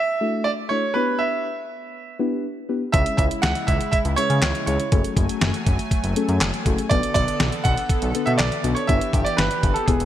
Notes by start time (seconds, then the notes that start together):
Already playing: E5
0.21 A3 D4 E4 F#4 A4
0.44 D5
0.69 A3 D4 E4 F#4 A4 C#5
0.94 B3 D4 E4 G4 B4
1.19 E5
2.19 B3 D4 E4 G4 B4
2.69 B3 D4 E4 G4 B4
2.92 C#2 C#3 G#3 C#4 E4 C#5 E5, kick, closed hi-hat
3.06 closed hi-hat
3.17 C#2 E5, kick, closed hi-hat
3.31 closed hi-hat
3.42 C#2 F#5, snare, closed hi-hat
3.55 closed hi-hat
3.67 C#2 E5, kick, closed hi-hat
3.81 closed hi-hat
3.91 E5, kick, closed hi-hat
4.05 C#2, closed hi-hat
4.16 G#3 C#4 E4 G#4 B4 C#5, closed hi-hat
4.30 C#3, closed hi-hat
4.42 C#2, snare, clap, closed hi-hat
4.55 closed hi-hat
4.66 C#2 G#3 C#4 E4 G#4 C#5, closed hi-hat
4.80 closed hi-hat
4.91 F#1 F#3 A3 C#4 F#4 G#4 A4 G#5, kick, closed hi-hat
5.04 closed hi-hat
5.17 F#1, kick, closed hi-hat
5.29 closed hi-hat
5.41 F#1, snare, closed hi-hat
5.54 closed hi-hat
5.67 F#1, kick, closed hi-hat
5.79 closed hi-hat
5.91 kick, closed hi-hat
6.04 F#1, closed hi-hat
6.16 A3 C#4 F#4 G#4 A4, closed hi-hat
6.29 F#2, closed hi-hat
6.41 F#1, snare, clap, closed hi-hat
6.54 closed hi-hat
6.66 F#1 A3 C#4 F#4 G#4 A4, kick, closed hi-hat
6.78 closed hi-hat
6.89 B1 D3 B3 D4 F#4 A4 B4 D5, kick, closed hi-hat
7.03 closed hi-hat
7.14 B1 D5, kick, closed hi-hat
7.28 closed hi-hat
7.40 B1, snare, closed hi-hat
7.52 closed hi-hat
7.64 B1 F#5, kick, closed hi-hat
7.78 closed hi-hat
7.89 kick, closed hi-hat
8.02 B1, closed hi-hat
8.15 B3 D4 F#4 A4 B4, closed hi-hat
8.26 B2 E5, closed hi-hat
8.38 B1 D5, snare, clap, closed hi-hat
8.52 closed hi-hat
8.64 B1 B3 D4 F#4 A4 B4, closed hi-hat
8.75 C#5, closed hi-hat
8.87 G1 E3 B3 D4 E4 G4 B4 E5, kick, closed hi-hat
9.01 closed hi-hat
9.13 G1, kick, closed hi-hat
9.25 D5, closed hi-hat
9.37 G1 B4, snare, closed hi-hat
9.51 closed hi-hat
9.63 G1, kick, closed hi-hat
9.74 A4, closed hi-hat
9.86 E1 G#3 B3 E4 F#4 G#4 B4, kick, closed hi-hat
10.00 E1, closed hi-hat